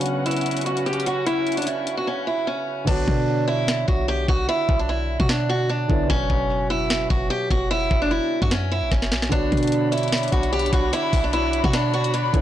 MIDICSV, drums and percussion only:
0, 0, Header, 1, 2, 480
1, 0, Start_track
1, 0, Key_signature, 2, "minor"
1, 0, Tempo, 402685
1, 1508, Time_signature, 4, 2, 24, 8
1, 14799, End_track
2, 0, Start_track
2, 0, Title_t, "Drums"
2, 12, Note_on_c, 9, 42, 78
2, 68, Note_off_c, 9, 42, 0
2, 68, Note_on_c, 9, 42, 75
2, 187, Note_off_c, 9, 42, 0
2, 308, Note_on_c, 9, 42, 70
2, 372, Note_off_c, 9, 42, 0
2, 372, Note_on_c, 9, 42, 62
2, 436, Note_off_c, 9, 42, 0
2, 436, Note_on_c, 9, 42, 52
2, 492, Note_off_c, 9, 42, 0
2, 492, Note_on_c, 9, 42, 42
2, 548, Note_off_c, 9, 42, 0
2, 548, Note_on_c, 9, 42, 67
2, 612, Note_off_c, 9, 42, 0
2, 612, Note_on_c, 9, 42, 66
2, 675, Note_off_c, 9, 42, 0
2, 675, Note_on_c, 9, 42, 67
2, 732, Note_off_c, 9, 42, 0
2, 732, Note_on_c, 9, 42, 67
2, 789, Note_off_c, 9, 42, 0
2, 789, Note_on_c, 9, 42, 65
2, 908, Note_off_c, 9, 42, 0
2, 916, Note_on_c, 9, 42, 63
2, 1028, Note_off_c, 9, 42, 0
2, 1028, Note_on_c, 9, 42, 41
2, 1108, Note_off_c, 9, 42, 0
2, 1108, Note_on_c, 9, 42, 55
2, 1188, Note_off_c, 9, 42, 0
2, 1188, Note_on_c, 9, 42, 65
2, 1269, Note_off_c, 9, 42, 0
2, 1269, Note_on_c, 9, 42, 73
2, 1388, Note_off_c, 9, 42, 0
2, 1508, Note_on_c, 9, 42, 77
2, 1628, Note_off_c, 9, 42, 0
2, 1748, Note_on_c, 9, 42, 46
2, 1811, Note_off_c, 9, 42, 0
2, 1811, Note_on_c, 9, 42, 56
2, 1876, Note_off_c, 9, 42, 0
2, 1876, Note_on_c, 9, 42, 67
2, 1932, Note_off_c, 9, 42, 0
2, 1932, Note_on_c, 9, 42, 81
2, 1988, Note_off_c, 9, 42, 0
2, 1988, Note_on_c, 9, 42, 79
2, 2108, Note_off_c, 9, 42, 0
2, 2228, Note_on_c, 9, 42, 69
2, 2347, Note_off_c, 9, 42, 0
2, 3427, Note_on_c, 9, 36, 122
2, 3427, Note_on_c, 9, 49, 94
2, 3546, Note_off_c, 9, 49, 0
2, 3547, Note_off_c, 9, 36, 0
2, 3667, Note_on_c, 9, 36, 95
2, 3787, Note_off_c, 9, 36, 0
2, 4388, Note_on_c, 9, 38, 109
2, 4507, Note_off_c, 9, 38, 0
2, 4629, Note_on_c, 9, 36, 90
2, 4748, Note_off_c, 9, 36, 0
2, 5107, Note_on_c, 9, 36, 97
2, 5226, Note_off_c, 9, 36, 0
2, 5588, Note_on_c, 9, 36, 98
2, 5707, Note_off_c, 9, 36, 0
2, 6195, Note_on_c, 9, 36, 95
2, 6308, Note_on_c, 9, 38, 111
2, 6314, Note_off_c, 9, 36, 0
2, 6427, Note_off_c, 9, 38, 0
2, 7028, Note_on_c, 9, 36, 97
2, 7147, Note_off_c, 9, 36, 0
2, 7269, Note_on_c, 9, 36, 123
2, 7388, Note_off_c, 9, 36, 0
2, 7508, Note_on_c, 9, 36, 97
2, 7627, Note_off_c, 9, 36, 0
2, 8227, Note_on_c, 9, 38, 109
2, 8346, Note_off_c, 9, 38, 0
2, 8468, Note_on_c, 9, 36, 91
2, 8587, Note_off_c, 9, 36, 0
2, 8946, Note_on_c, 9, 36, 92
2, 9066, Note_off_c, 9, 36, 0
2, 9428, Note_on_c, 9, 36, 100
2, 9547, Note_off_c, 9, 36, 0
2, 10034, Note_on_c, 9, 36, 96
2, 10147, Note_on_c, 9, 38, 108
2, 10154, Note_off_c, 9, 36, 0
2, 10266, Note_off_c, 9, 38, 0
2, 10627, Note_on_c, 9, 38, 60
2, 10628, Note_on_c, 9, 36, 97
2, 10746, Note_off_c, 9, 38, 0
2, 10747, Note_off_c, 9, 36, 0
2, 10755, Note_on_c, 9, 38, 63
2, 10867, Note_off_c, 9, 38, 0
2, 10867, Note_on_c, 9, 38, 91
2, 10987, Note_off_c, 9, 38, 0
2, 10995, Note_on_c, 9, 38, 91
2, 11107, Note_on_c, 9, 42, 79
2, 11108, Note_on_c, 9, 36, 121
2, 11114, Note_off_c, 9, 38, 0
2, 11226, Note_off_c, 9, 42, 0
2, 11227, Note_off_c, 9, 36, 0
2, 11348, Note_on_c, 9, 36, 94
2, 11348, Note_on_c, 9, 42, 48
2, 11411, Note_off_c, 9, 42, 0
2, 11411, Note_on_c, 9, 42, 58
2, 11467, Note_off_c, 9, 36, 0
2, 11476, Note_off_c, 9, 42, 0
2, 11476, Note_on_c, 9, 42, 72
2, 11532, Note_off_c, 9, 42, 0
2, 11532, Note_on_c, 9, 42, 81
2, 11587, Note_off_c, 9, 42, 0
2, 11587, Note_on_c, 9, 42, 78
2, 11707, Note_off_c, 9, 42, 0
2, 11828, Note_on_c, 9, 42, 76
2, 11891, Note_off_c, 9, 42, 0
2, 11891, Note_on_c, 9, 42, 62
2, 11957, Note_off_c, 9, 42, 0
2, 11957, Note_on_c, 9, 42, 53
2, 12012, Note_off_c, 9, 42, 0
2, 12012, Note_on_c, 9, 42, 42
2, 12069, Note_off_c, 9, 42, 0
2, 12069, Note_on_c, 9, 38, 109
2, 12069, Note_on_c, 9, 42, 69
2, 12132, Note_off_c, 9, 42, 0
2, 12132, Note_on_c, 9, 42, 69
2, 12188, Note_off_c, 9, 38, 0
2, 12195, Note_off_c, 9, 42, 0
2, 12195, Note_on_c, 9, 42, 68
2, 12251, Note_off_c, 9, 42, 0
2, 12251, Note_on_c, 9, 42, 68
2, 12308, Note_off_c, 9, 42, 0
2, 12308, Note_on_c, 9, 36, 87
2, 12308, Note_on_c, 9, 42, 64
2, 12427, Note_off_c, 9, 42, 0
2, 12428, Note_off_c, 9, 36, 0
2, 12435, Note_on_c, 9, 42, 63
2, 12548, Note_off_c, 9, 42, 0
2, 12548, Note_on_c, 9, 42, 41
2, 12628, Note_off_c, 9, 42, 0
2, 12628, Note_on_c, 9, 42, 54
2, 12708, Note_off_c, 9, 42, 0
2, 12708, Note_on_c, 9, 42, 69
2, 12787, Note_off_c, 9, 42, 0
2, 12787, Note_on_c, 9, 36, 95
2, 12787, Note_on_c, 9, 42, 74
2, 12906, Note_off_c, 9, 36, 0
2, 12907, Note_off_c, 9, 42, 0
2, 13028, Note_on_c, 9, 42, 81
2, 13147, Note_off_c, 9, 42, 0
2, 13267, Note_on_c, 9, 36, 97
2, 13267, Note_on_c, 9, 46, 85
2, 13386, Note_off_c, 9, 46, 0
2, 13387, Note_off_c, 9, 36, 0
2, 13507, Note_on_c, 9, 42, 76
2, 13626, Note_off_c, 9, 42, 0
2, 13747, Note_on_c, 9, 42, 73
2, 13866, Note_off_c, 9, 42, 0
2, 13874, Note_on_c, 9, 36, 98
2, 13987, Note_on_c, 9, 38, 108
2, 13987, Note_on_c, 9, 42, 83
2, 13993, Note_off_c, 9, 36, 0
2, 14107, Note_off_c, 9, 38, 0
2, 14107, Note_off_c, 9, 42, 0
2, 14228, Note_on_c, 9, 42, 48
2, 14347, Note_off_c, 9, 42, 0
2, 14355, Note_on_c, 9, 42, 80
2, 14468, Note_off_c, 9, 42, 0
2, 14468, Note_on_c, 9, 42, 70
2, 14587, Note_off_c, 9, 42, 0
2, 14707, Note_on_c, 9, 36, 96
2, 14707, Note_on_c, 9, 42, 73
2, 14799, Note_off_c, 9, 36, 0
2, 14799, Note_off_c, 9, 42, 0
2, 14799, End_track
0, 0, End_of_file